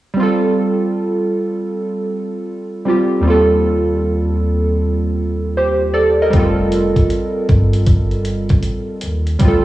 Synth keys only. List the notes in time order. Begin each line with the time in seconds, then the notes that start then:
0.14 G3 C4
0.20 F4 A4
2.85 G3 C4 F4
2.89 G4
3.20 D#2 G3
3.25 C4 F4
3.30 A4
5.57 G4 C5
5.94 A4 D5
6.22 A#4 D#5
6.30 G3 C4
6.36 F4 A4
9.39 G3 C4
9.45 F4 A4